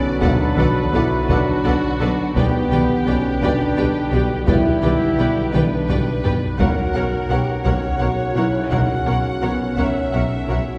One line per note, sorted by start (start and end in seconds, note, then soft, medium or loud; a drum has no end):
0.00 2.32 D3 medium
0.00 2.32 F#3 medium
0.00 2.31 B3 medium
0.00 0.20 C#4 medium
0.00 2.32 F#4 medium
0.00 2.32 A4 medium
0.00 2.31 B4 loud
0.00 0.17 D5 medium
0.00 sub drop medium
0.21 0.36 B1 medium
0.21 0.30 B1 medium
0.21 0.29 B2 medium
0.21 0.92 D4 medium
0.21 0.29 A4 medium
0.21 0.29 B4 medium
0.21 1.27 B4 medium
0.21 0.31 D5 medium
0.21 0.31 F#5 medium
0.21 taiko medium
0.57 0.72 B1 medium
0.57 0.66 B1 medium
0.57 0.65 B2 medium
0.57 0.65 A4 medium
0.57 0.65 B4 medium
0.57 0.66 D5 medium
0.57 0.67 F#5 medium
0.57 taiko mid soft
0.93 1.01 B1 medium
0.93 1.08 B1 medium
0.93 1.01 B2 medium
0.93 1.29 E4 medium
0.93 1.01 A4 medium
0.93 1.01 B4 medium
0.93 1.03 D5 medium
0.93 1.02 F#5 medium
1.29 1.43 B1 medium
1.29 1.37 B1 medium
1.29 1.37 B2 medium
1.29 2.00 D4 medium
1.29 2.36 F#4 medium
1.29 1.37 A4 medium
1.29 1.37 B4 medium
1.29 1.38 D5 medium
1.29 1.38 F#5 medium
1.29 taiko medium
1.65 1.79 B1 medium
1.65 1.73 B1 medium
1.65 1.73 B2 medium
1.65 1.73 A4 medium
1.65 1.73 B4 soft
1.65 1.73 D5 medium
1.65 1.73 F#5 medium
2.01 2.15 B1 medium
2.01 2.09 B1 medium
2.01 2.09 B2 medium
2.01 2.35 D4 loud
2.01 2.09 A4 medium
2.01 2.09 B4 medium
2.01 2.09 D5 medium
2.01 2.09 F#5 medium
2.35 2.50 B1 medium
2.35 2.44 B1 medium
2.35 2.44 B2 medium
2.35 6.42 D3 medium
2.35 6.42 G3 medium
2.35 3.05 B3 medium
2.35 6.56 B3 medium
2.35 6.60 G4 medium
2.35 2.44 G4 medium
2.35 4.44 G4 medium
2.35 6.56 B4 medium
2.35 2.44 B4 medium
2.35 2.45 D5 medium
2.35 2.45 G5 medium
2.35 taiko medium
2.71 2.85 B1 medium
2.71 2.80 B1 medium
2.71 2.79 B2 medium
2.71 2.79 G4 medium
2.71 2.79 B4 medium
2.71 2.79 D5 medium
2.71 2.80 G5 medium
2.71 taiko mid soft
3.06 3.21 B1 medium
3.06 3.15 B1 medium
3.06 3.14 B2 medium
3.06 3.42 C#4 medium
3.06 3.16 G4 medium
3.06 3.16 B4 soft
3.06 3.15 D5 medium
3.06 3.15 G5 medium
3.41 3.50 B1 medium
3.41 3.56 B1 medium
3.41 3.49 B2 medium
3.41 4.13 D4 medium
3.41 3.50 G4 medium
3.41 3.51 B4 medium
3.41 3.50 D5 medium
3.41 3.50 G5 medium
3.41 taiko medium
3.76 3.91 B1 medium
3.76 3.86 B1 medium
3.76 3.85 B2 medium
3.76 3.86 G4 medium
3.76 3.86 B4 medium
3.76 3.84 D5 medium
3.76 3.85 G5 medium
4.12 4.26 B1 medium
4.12 4.22 B1 medium
4.12 4.20 B2 medium
4.12 4.48 G4 medium
4.12 4.22 G4 medium
4.12 4.22 B4 medium
4.12 4.21 D5 medium
4.12 4.21 G5 medium
4.47 4.62 B1 medium
4.47 4.57 B1 medium
4.47 4.56 B2 medium
4.47 5.54 E4 loud
4.47 4.56 G4 medium
4.47 5.52 G4 medium
4.47 4.56 B4 medium
4.47 4.55 D5 medium
4.47 4.55 G5 medium
4.47 taiko medium
4.82 4.97 B1 medium
4.82 4.92 B1 medium
4.82 4.90 B2 medium
4.82 4.92 G4 medium
4.82 4.92 B4 medium
4.82 4.90 D5 medium
4.82 4.90 G5 medium
4.82 taiko mid soft
5.18 5.33 B1 medium
5.18 5.28 B1 medium
5.18 5.26 B2 medium
5.18 5.27 G4 soft
5.18 5.27 B4 medium
5.18 5.26 D5 medium
5.18 5.26 G5 medium
5.53 5.68 B1 medium
5.53 5.62 B1 medium
5.53 5.61 B2 medium
5.53 6.43 D4 medium
5.53 5.62 G4 medium
5.53 5.62 B4 medium
5.53 6.60 B4 medium
5.53 5.61 D5 medium
5.53 5.61 G5 medium
5.53 taiko mid medium
5.89 6.04 B1 medium
5.89 5.98 B1 medium
5.89 5.98 B2 medium
5.89 5.97 G4 medium
5.89 5.97 B4 medium
5.89 5.97 D5 medium
5.89 5.97 G5 medium
5.89 taiko low-mid medium
6.24 6.39 B1 medium
6.24 6.33 B1 medium
6.24 6.32 B2 medium
6.24 6.32 G4 medium
6.24 6.32 B4 medium
6.24 6.32 D5 medium
6.24 6.32 G5 medium
6.24 taiko low medium
6.58 6.68 B1 medium
6.58 6.74 B1 medium
6.58 6.67 B2 medium
6.58 10.78 C#3 medium
6.58 10.78 C#4 medium
6.58 10.67 C#4 medium
6.58 7.29 F#4 medium
6.58 10.67 A#4 medium
6.58 6.68 A#4 medium
6.58 7.64 A#4 medium
6.58 6.68 C#5 medium
6.58 6.67 F#5 medium
6.58 10.67 F#5 medium
6.58 taiko medium
6.94 7.03 B1 medium
6.94 7.09 B1 medium
6.94 7.03 B2 medium
6.94 7.03 A#4 medium
6.94 7.04 C#5 medium
6.94 7.02 F#5 medium
7.29 7.39 B1 medium
7.29 7.45 B1 medium
7.29 7.38 B2 medium
7.29 7.65 G4 loud
7.29 7.39 A#4 medium
7.29 7.39 C#5 soft
7.29 7.37 F#5 medium
7.64 7.73 B1 medium
7.64 7.80 B1 medium
7.64 7.73 B2 medium
7.64 8.36 F#4 medium
7.64 7.74 A#4 medium
7.64 7.74 C#5 medium
7.64 8.72 C#5 medium
7.64 7.73 F#5 medium
7.64 taiko medium
7.99 8.08 B1 medium
7.99 8.15 B1 medium
7.99 8.08 B2 medium
7.99 8.09 A#4 medium
7.99 8.09 C#5 medium
7.99 8.07 F#5 medium
8.35 8.44 B1 medium
8.35 8.50 B1 medium
8.35 8.44 B2 medium
8.35 8.70 E4 medium
8.35 8.44 A#4 soft
8.35 8.44 C#5 medium
8.35 8.45 F#5 soft
8.70 8.86 B1 medium
8.70 8.80 B1 medium
8.70 8.80 B2 medium
8.70 9.42 F#4 medium
8.70 8.80 A#4 medium
8.70 8.80 C#5 soft
8.70 8.79 F#5 medium
8.70 9.78 F#5 medium
8.70 taiko medium
9.06 9.21 B1 medium
9.06 9.15 B1 medium
9.06 9.16 B2 medium
9.06 9.15 A#4 medium
9.06 9.15 C#5 soft
9.06 9.16 F#5 medium
9.42 9.56 B1 soft
9.42 9.50 B1 medium
9.42 9.50 B2 medium
9.42 9.78 B3 medium
9.42 9.50 A#4 soft
9.42 9.51 C#5 soft
9.42 9.51 F#5 medium
9.77 9.85 B1 medium
9.77 9.92 B1 soft
9.77 9.86 B2 medium
9.77 10.49 C#4 medium
9.77 9.87 A#4 soft
9.77 9.86 C#5 soft
9.77 10.78 E5 medium
9.77 9.86 F#5 medium
9.77 taiko medium
10.13 10.27 B1 medium
10.13 10.22 B1 medium
10.13 10.21 B2 medium
10.13 10.21 A#4 soft
10.13 10.21 C#5 soft
10.13 10.21 F#5 soft
10.48 10.57 B1 medium
10.48 10.63 B1 soft
10.48 10.56 B2 medium
10.48 10.78 F#4 medium
10.48 10.56 A#4 soft
10.48 10.57 C#5 soft
10.48 10.58 F#5 soft